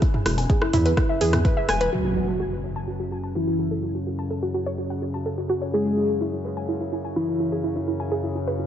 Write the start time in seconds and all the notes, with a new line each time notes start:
Already playing: F#2 C#3
0.02 E4, kick, closed hi-hat
0.14 E4, mid tom
0.26 E1 E4, cross-stick, open hi-hat
0.38 G#5, open hi-hat
0.50 G#4, kick, closed hi-hat
0.62 E4, cross-stick
0.73 E2 E4, mid tom, open hi-hat
0.85 B4, closed hi-hat
0.97 E4, kick, cross-stick, closed hi-hat
1.09 E5
1.21 E2 G#4, open hi-hat
1.33 E4, cross-stick, closed hi-hat, mid tom
1.45 B4, kick, closed hi-hat
1.57 E5
1.69 E1 G#5, cross-stick, open hi-hat
1.81 B4, closed hi-hat
1.92 F#2 C#3 F#4, impact
2.04 F#4
2.16 F#4
2.28 A5
2.40 F#4
2.52 F#4
2.64 C#5
2.76 A5
2.88 F#4
3.00 F#4
3.11 F#4
3.24 A5
3.35 E4 F#4
3.47 F#4
3.59 F#4
3.71 A4
3.83 F#4
3.95 F#4
4.07 F#4
4.19 A5
4.30 A4
4.43 F#4
4.54 F#4
4.66 C#5
4.78 F#4
4.90 F#5
5.02 F#4
5.14 A5
5.26 A4
5.38 F#4
5.50 F#4
5.62 C#5
5.73 E4 G#4
5.85 E4
5.97 E4
6.09 G#5
6.21 E4
6.33 E4
6.45 B4
6.57 G#5
6.69 E4
6.81 E4
6.92 E4
7.05 G#5
7.16 E4
7.28 E4
7.40 E4
7.52 G#4
7.64 E4
7.76 E4
7.88 E4
8.00 G#5
8.12 G#4
8.24 E4
8.35 E4
8.47 B4
8.59 E4